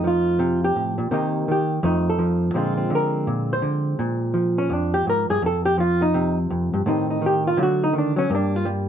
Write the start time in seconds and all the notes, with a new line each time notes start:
Already playing: F2 A3 D#4
0.04 F3 F4
0.39 C3
0.64 G4
0.76 A2
0.98 A#2
1.11 C3 D#3 A#3 D#4 G4
1.48 D#3 G4
1.83 F2 F3 A3 D#4
2.10 A4
2.19 F3
2.54 A#2 D3 G#3 C4 F4
2.77 C4
2.90 D3
2.95 A#4
3.27 A#2
3.53 C5
3.62 D3
3.99 A#2
4.34 F3
4.58 C#4
4.70 F2
4.74 D4
4.94 G4
5.07 G#2 A#4
5.30 G2 G#4
5.42 F2
5.46 A4
5.65 G4
5.78 F3 F4
6.02 D#4
6.14 C3
6.50 F2
6.74 G2
6.86 A2 D#3 C4 D#4 G4
7.10 D#4
7.22 D#3
7.26 G4
7.47 F4
7.57 D3 F#3 A3
7.63 F#4
7.84 D#4
7.93 D#3
7.98 D4
8.16 F#3 C#4
8.30 G2 G3 A#3
8.35 D4
8.56 F4
8.65 G3